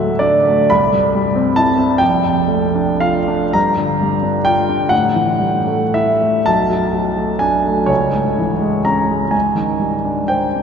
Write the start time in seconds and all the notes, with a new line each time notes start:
Already playing: D2 A2 F#3 A3 E5
0.19 D4 D5
0.47 A3
0.70 C2 B5
0.93 G2
1.15 G3
1.36 C4
1.56 E4 A5
1.78 C4
1.98 A#1 G5
2.24 F2
2.47 A3
2.75 D4
3.00 F4 F5
3.28 D4
3.53 G2 A#5
3.77 D3
4.01 G3
4.23 D4
4.45 F4 G5
4.69 D4
4.89 A2 F#5
5.14 E3
5.39 G3
5.67 A3
5.94 E4 E5
6.21 A3
6.46 B1 A5
6.70 F#2
6.93 F#3
7.16 A3
7.39 D4 G#5
7.64 A3
7.86 C#2 C#5
8.12 G#2
8.39 E3
8.61 G#3
8.85 C#4 A#5
9.08 G#3
9.31 G#2 G#5
9.55 D#3
9.80 G3
10.05 D4
10.28 C5 G5
10.56 D4